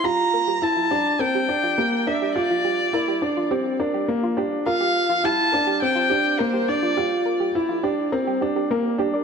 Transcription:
X:1
M:4/4
L:1/16
Q:1/4=104
K:Bblyd
V:1 name="Violin"
b4 a4 g6 e2 | d8 z8 | f4 a4 g4 c2 d2- | d2 z12 z2 |]
V:2 name="Synth arpeggio sound"
G z B G z F G z B G z F G z B G | z F G z B G z F G z B G z F G z | B G z F G z B G z F G z B G z F | G z B G z F G z B G G G B z G d |]
V:3 name="Grand piano"
F4 E2 D2 C2 D2 B,2 D2 | F4 E2 D2 C2 D2 B,2 D2 | F4 E2 D2 C2 D2 B,2 D2 | F4 E2 D2 C2 D2 B,2 D2 |]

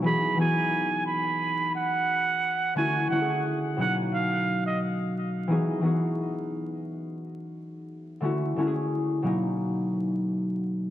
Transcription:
X:1
M:4/4
L:1/16
Q:"Swing 16ths" 1/4=88
K:Elyd
V:1 name="Muted trumpet"
b2 g4 b4 f6 | g2 f2 z2 f z =f3 d z4 | z16 | z16 |]
V:2 name="Harp"
[E,B,DFG]2 [E,B,DFG]6 z8 | [=D,=A,CEF]2 [D,A,CEFG]4 [B,,F,^A,C^D]6 z4 | [E,B,DFG]2 [E,B,DFG]6 z8 | [=D,=A,CEF]2 [D,A,CEFG]4 [B,,F,^A,C^D]6 z4 |]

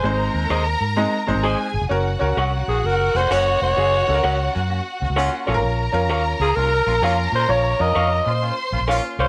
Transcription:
X:1
M:4/4
L:1/16
Q:"Swing" 1/4=129
K:Gblyd
V:1 name="Violin section"
[Bb]12 [Aa]4 | [Gg]16- | [Gg]12- [Gg]2 [Bb]2- | [Bb]16- |
[Bb]6 [cc']8 z2 |]
V:2 name="Clean electric guitar"
z4 [Ace]2 z6 [Ace]2 z2 | z4 [Bdg]2 z6 [Bdg]2 z2 | z4 [Bdg]2 z6 [Bdg]2 [Bdf]2 | z4 [Bdf]2 z6 [Bdf]2 z2 |
z4 [Bdf]2 z6 [Bdf]2 [Bdf]2 |]
V:3 name="Alto saxophone"
c2 z12 z2 | z6 A2 B2 c2 d2 d2- | d6 z8 z2 | z6 A2 B4 z2 c2 |
d2 e6 z6 c2 |]
V:4 name="Grand piano"
[A,CEc]4 z4 [A,CEe]2 [A,CEc]4 z2 | [DGB]2 [DGB]4 z8 z2 | [DGA]2 [DG=AB]4 z8 [DFAB]2- | [DF=AB]2 [DFB]4 z8 z2 |
[DFd]2 [DFB]4 z8 z2 |]
V:5 name="Horn section"
z16 | z6 [B,DG] z [B,DG] z [B,DG] z [B,DG]4 | z6 [B,DG] z [B,DG] z [B,DG] z [B,DF]4 | z6 [B,DF] z [B,DF] z [B,DF] z [B,DF]4 |
z6 [B,DF] z [B,DF] z [B,DF] z [B,DF]4 |]
V:6 name="Fingered electric bass" clef=bass
A,,,2 E,,2 E,,2 A,,3 z A,,, A,,,2 z A,,, F,,, | G,,,2 D,,2 C,,2 B,,,2 G,,,2 F,,,2 G,,,2 F,,,2 | G,,,2 D,,2 D,,2 G,,3 z D,, D,,2 z B,,, A,,, | B,,,2 F,,2 E,,2 D,,2 C,,2 B,,,2 F,,2 B,,2 |
B,,,2 F,,2 F,,2 B,,3 z B,,, B,,,2 z C,, z |]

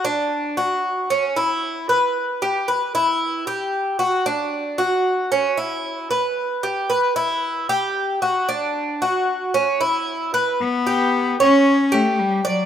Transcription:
X:1
M:4/4
L:1/8
Q:1/4=114
K:Edor
V:1 name="Cuban tres"
D2 F2 C E2 B- | B G B E2 G2 F | D2 F2 C E2 B- | B G B E2 G2 F |
D2 F2 C E2 B | z G2 c2 G2 d |]
V:2 name="Cello"
z8 | z8 | z8 | z8 |
z8 | B,3 C2 A, G, F, |]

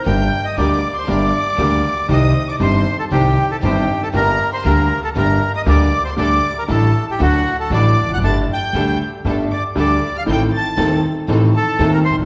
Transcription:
X:1
M:4/4
L:1/16
Q:1/4=118
K:Gm
V:1 name="Violin section"
g'3 e' d'3 c' d'8 | e'3 d' c'3 a g3 a g3 a | b3 c' b3 a b3 e' d'3 c' | d'3 b a3 g ^f3 a d'3 ^f' |
a'2 g'4 z4 d'2 d'3 f' | g'2 a'4 z4 a3 b c'2 |]
V:2 name="Bandoneon"
g3 e d3 c d8 | e3 d c3 A G3 A G3 A | B3 c B3 A B3 e d3 c | d3 B A3 G ^F3 A d3 ^f |
a2 g4 z4 d2 d3 f | g2 a4 z4 A3 B c2 |]
V:3 name="String section"
[DGB]2 z2 [DGB]2 z2 [DGB]2 z2 [DGB]2 z2 | [EGc]2 z2 [EGc]2 z2 [EGc]2 z2 [EGc]2 z2 | [DGB]2 z2 [DGB]2 z2 [DGB]2 z2 [DGB]2 z2 | [DGA]2 z2 [DGA]2 z2 [D^FA]2 z2 [DFA]2 z2 |
[DGA]2 z2 [DGA]2 z2 [DGA]2 z2 [DGA]2 z2 | [CEA]2 z2 [CEA]2 z2 [CEA]2 z2 [CEA]2 z2 |]
V:4 name="Upright piano" clef=bass
[G,,,G,,D,G,B,G]2 z2 [D,,D,G,B,G]2 z2 [G,,,G,,D,G,B,G]2 z2 [D,,D,G,B,G]2 z2 | [C,,C,E,G,CG]2 z2 [G,,,G,,E,G,CG]2 z2 [C,,C,E,G,CG]2 z2 [G,,,G,,E,G,CG]2 z2 | [G,,,G,,D,G,B,G]2 z2 [D,,D,G,B,G]2 z2 [G,,,G,,D,G,B,G]2 z2 [D,,D,G,B,G]2 z2 | [D,,D,G,A,G]2 z2 [A,,,A,,D,G,A,G]2 z2 [D,,D,^F,A,^F]2 z2 [A,,,A,,D,F,A,F]2 z/2 =E,,/2 =F,,/2 ^F,,/2 |
[G,,,G,,D,G,A,G]2 z2 [D,,D,G,A,G]2 z2 [G,,,G,,D,G,A,G]2 z2 [D,,D,G,A,G]2 z2 | [A,,,A,,E,A,CA]2 z2 [E,,,E,,E,A,CA]2 z2 [A,,,A,,E,A,CA]2 z2 [E,,,E,,E,A,CA]2 z/2 =B,,,/2 C,,/2 ^C,,/2 |]
V:5 name="Upright bass" clef=bass
G,,,3/2 z2 z/2 D,,3/2 z2 z/2 G,,,3/2 z2 z/2 D,,3/2 z2 z/2 | C,,3/2 z2 z/2 G,,,3/2 z2 z/2 C,,3/2 z2 z/2 G,,,3/2 z2 z/2 | G,,,3/2 z2 z/2 D,,3/2 z2 z/2 G,,,3/2 z2 z/2 D,,3/2 z2 z/2 | D,,3/2 z2 z/2 A,,,3/2 z2 z/2 D,,3/2 z2 z/2 A,,,3/2 z =E,,,/2 F,,,/2 ^F,,,/2 |
G,,,3/2 z2 z/2 D,,3/2 z2 z/2 G,,,3/2 z2 z/2 D,,3/2 z2 z/2 | A,,,3/2 z2 z/2 E,,3/2 z2 z/2 A,,,3/2 z2 z/2 E,,3/2 z =B,,,/2 C,,/2 z/2 |]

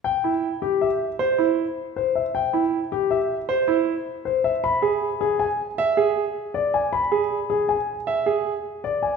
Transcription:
X:1
M:6/4
L:1/8
Q:1/4=157
K:Em
V:1 name="Grand piano"
g z2 G e z4 z c e | g z2 G e z4 z c e | b z2 ^G ^g z4 z d g | b z2 ^G ^g z4 z d g |]
V:2 name="Grand piano"
z E z4 c E z4 | z E z4 c E z4 | z ^G z4 e G z4 | z ^G z4 e G z4 |]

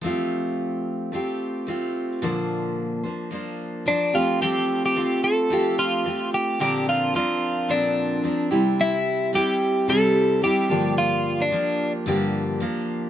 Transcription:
X:1
M:4/4
L:1/16
Q:"Swing 16ths" 1/4=110
K:F
V:1 name="Clean electric guitar"
z16 | z12 D2 F2 | G3 G3 A4 F4 G2 | G2 F2 F4 D6 z2 |
E4 G4 A4 G4 | F3 D4 z8 z |]
V:2 name="Steel-string acoustic guitar"
[F,A,CFG]8 [A,CFG]4 [A,CFG]4 | [B,,D,F,B,Dc]6 [F,B,Dc]2 [F,B,Dc]4 [F,B,Dc]2 [F,A,CFG]2 | [F,A,CFG]4 [A,CFG]4 [F,A,CFG]4 [A,CFG]4 | [B,,D,F,CDB]4 [F,CDB]4 [B,,D,F,CDB]4 [F,CDB]2 [C,G,CEG]2- |
[C,G,CEG]4 [G,CEG]4 [C,G,CEG]4 [G,CEG]2 [G,,D,F,B,DG]2- | [G,,D,F,B,DG]4 [F,B,DG]4 [G,,D,F,B,DG]4 [F,B,DG]4 |]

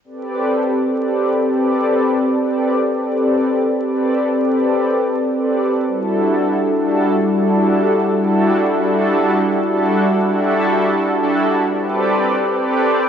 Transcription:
X:1
M:4/4
L:1/16
Q:1/4=165
K:Ador
V:1 name="Analog synth pad"
[CGABd]8- [CGABd]2 [CGABd]6 | [CGABd]8- [CGABd]2 [CGABd]6 | [CGABd]8- [CGABd]2 [CGABd]6 | [CGABd]8- [CGABd]2 [CGABd]6 |
[G,DEFA]8- [G,DEFA]2 [G,DEFA]6 | [G,DEFA]8- [G,DEFA]2 [G,DEFA]6 | [G,DEFA]8- [G,DEFA]2 [G,DEFA]6 | [G,DEFA]8- [G,DEFA]2 z [G,DEFA]3 [G,DEFA] z |
[CGABd]8- [CGABd]2 [CGABd]6 |]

